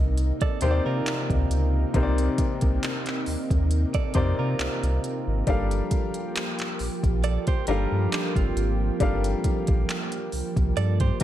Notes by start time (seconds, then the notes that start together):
Already playing: C2 C3 A#3 D#4
0.18 closed hi-hat
0.41 A4 D5, kick, closed hi-hat
0.61 D#2 C3 C4 D#4 G4 A#4 C5, closed hi-hat
0.71 D5
0.86 C3 F4 A#4
1.07 clap, closed hi-hat
1.30 D2, kick, closed hi-hat
1.50 C#2, closed hi-hat
1.94 C2 C3 C4 D#4 A#4 C5, kick, closed hi-hat
2.03 D5
2.18 closed hi-hat
2.38 kick, closed hi-hat
2.61 C2, kick, closed hi-hat
2.83 clap, closed hi-hat
3.06 clap, closed hi-hat
3.26 D#2, open hi-hat
3.51 D#2, kick, closed hi-hat
3.71 closed hi-hat
3.94 A4 D5, kick, closed hi-hat
4.14 F2 C3 C4 D#4 G4 A#4 C5 D5, kick, closed hi-hat
4.39 C3 F4 A#4
4.59 C2, clap, closed hi-hat
4.83 C2, closed hi-hat
5.04 closed hi-hat
5.27 G#1
5.47 G1 F3 G3 A#3 D4 G4 A4 A#4 F5, kick, closed hi-hat
5.71 closed hi-hat
5.91 kick, closed hi-hat
6.14 closed hi-hat
6.36 clap, closed hi-hat
6.59 clap, closed hi-hat
6.79 A#1, open hi-hat
7.03 A#1, kick, closed hi-hat
7.24 A4 D5, closed hi-hat
7.47 G4 C5, kick, closed hi-hat
7.67 G1 G3 D4 F4 A4 A#4 F5, closed hi-hat
7.92 G2
8.12 D4 G4, clap, closed hi-hat
8.36 G1 C4 F4, kick, closed hi-hat
8.56 G#1, closed hi-hat
9.00 G1 G3 D4 A4 A#4 F5, kick, closed hi-hat
9.24 closed hi-hat
9.44 kick, closed hi-hat
9.67 A#1, kick, closed hi-hat
9.89 clap, closed hi-hat
10.12 closed hi-hat
10.32 C2, open hi-hat
10.56 C2, kick, closed hi-hat
10.77 G2 A4 D5, closed hi-hat
11.00 G4 C5, kick, closed hi-hat
11.20 closed hi-hat